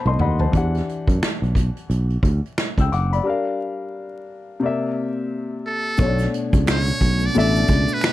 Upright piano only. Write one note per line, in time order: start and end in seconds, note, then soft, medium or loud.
0.00 0.50 B2 medium
0.00 0.51 A3 medium
0.00 0.41 C5 medium
0.00 0.08 D#5 medium
0.00 0.40 A5 soft
0.00 0.18 B5 medium
0.07 0.19 D#5 soft
0.07 0.19 C6 medium
0.21 0.40 D#5 medium
0.21 0.51 F#5 medium
0.21 0.39 B5 medium
0.40 0.72 C5 soft
0.40 0.72 A5 soft
0.52 3.21 E3 medium
0.52 3.22 D4 medium
0.52 3.23 G4 medium
0.57 2.55 F#5 medium
2.80 2.92 G5 soft
2.80 2.92 E6 medium
2.92 3.12 F#5 soft
2.92 3.11 D6 medium
3.13 3.45 D5 soft
3.13 3.45 B5 medium
3.23 4.58 G3 medium
3.23 4.59 D4 medium
3.23 4.60 A#4 medium
3.29 4.61 F5 medium
4.60 5.94 C3 medium
4.60 5.96 A#3 medium
4.60 5.96 D5 medium
4.66 5.98 E5 medium
5.98 7.26 B2 medium
5.98 7.27 A3 medium
5.98 6.07 C#4 soft
5.98 7.28 C#5 medium
6.06 7.31 D4 medium
7.35 8.13 B2 medium
7.35 8.13 A3 medium
7.35 8.13 D4 medium
7.35 8.13 E5 medium